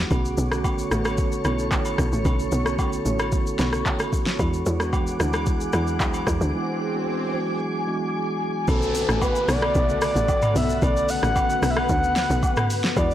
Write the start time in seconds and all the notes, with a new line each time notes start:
Already playing: E3 G#3 B3 D4 E4 F#4 G4 G#4
0.10 B1 D3 A3 B3 C#4 F#4 A4 C#5 C#6, kick, high agogo, shaker
0.25 shaker
0.38 B1, shaker
0.51 D3 A3 B3 C#4 F#4, cross-stick, shaker
0.64 kick, high agogo, low woodblock, shaker
0.79 shaker
0.91 A1 D3 A3 B3 C#4 F#4, cross-stick, shaker
1.05 cross-stick, high agogo, shaker
1.18 kick, shaker
1.32 shaker
1.44 B1 D3 A3 B3 C#4 E4, cross-stick, high agogo, shaker
1.59 shaker
1.71 A1, kick, clap, low woodblock, shaker
1.85 high agogo, shaker
1.98 B1, kick, cross-stick, shaker
2.13 A1, shaker
2.25 B1 D3 A3 B3 C#4 A4, kick, high agogo, shaker
2.39 shaker
2.52 B1, shaker
2.65 D3 A3 B3 C#4 F#4, cross-stick, shaker
2.79 kick, high agogo, low woodblock, shaker
2.93 shaker
3.05 A1 D3 A3 B3 C#4 E4, shaker
3.13 F#4
3.19 cross-stick, high agogo, shaker
3.32 kick, shaker
3.47 shaker
3.58 B1 C#3 A3 B3 C#4 F#4, snare, high agogo, shaker
3.65 D3
3.73 cross-stick, shaker
3.86 kick, clap, low woodblock, shaker
3.99 cross-stick, high agogo, shaker
4.13 kick, shaker
4.26 snare, shaker
4.39 E2 E3 G#3 B3 D4 F#4 G#4 F#5 D6, kick, swell, high agogo, shaker
4.54 shaker
4.66 E2, shaker
4.80 E3 G#3 B3 D4 F#4, cross-stick, shaker
4.93 kick, high agogo, low woodblock, shaker
5.07 shaker
5.19 D2 E3 G#3 B3 D4 E4, cross-stick, shaker
5.33 cross-stick, high agogo, shaker
5.46 kick, shaker
5.61 shaker
5.73 E2 E3 F#3 B3 D4 E4, cross-stick, high agogo, shaker
5.80 G#3
5.87 shaker
6.00 D2, kick, clap, low woodblock, shaker
6.14 high agogo, shaker
6.27 E2, kick, cross-stick, shaker
6.41 D2, shaker
6.53 E3 G#3 B3 D4 E4 G#5
6.94 E3 G#3 B3 D4 F#4
7.33 E3 F#3 B3 D4 F#4
7.40 G#3
7.87 E3 G#3 B3 D4 F#4
8.68 B1 D3 A3 B3 C#4 F#4 A4 F#5, kick, downlifter, high agogo, shaker
8.82 shaker
8.95 open hi-hat, shaker
9.09 A1, cross-stick, shaker
9.22 B4, kick, high agogo, low woodblock, shaker
9.36 shaker
9.48 B1 C#3 D3 A3 B3 A4 D5, cross-stick, open hi-hat, shaker
9.62 cross-stick, high agogo
9.75 B1, kick, shaker
9.89 C#3 D3 A3 B3 A4, shaker
10.02 D5, cross-stick, open hi-hat, high agogo, shaker
10.16 A1, shaker
10.28 kick, low woodblock, shaker
10.42 mid tom, high agogo, shaker
10.55 B1 E5, open hi-hat, shaker
10.70 shaker
10.82 B1 D3 A3 B3 C#4 A4 B4 D5, kick, high agogo, shaker
10.97 shaker
11.09 F#5, open hi-hat, shaker
11.22 A1 D3 A3 B3 C#4 F#4, cross-stick, shaker
11.36 kick, high agogo, low woodblock, shaker
11.49 C#3 A3 B3 C#4 F#4, shaker
11.56 D3
11.62 B1 F#5, cross-stick, open hi-hat, shaker
11.70 E5
11.77 F#5, cross-stick, high agogo
11.89 D2, kick, shaker
12.04 shaker
12.16 snare, open hi-hat, high agogo, shaker
12.30 B1, shaker
12.43 kick, low woodblock, shaker
12.57 cross-stick, mid tom, high agogo, shaker
12.70 open hi-hat, shaker
12.84 snare, shaker
12.96 E2 E3 G#3 B3 D4 F#4 D5, kick, high agogo, shaker
13.11 shaker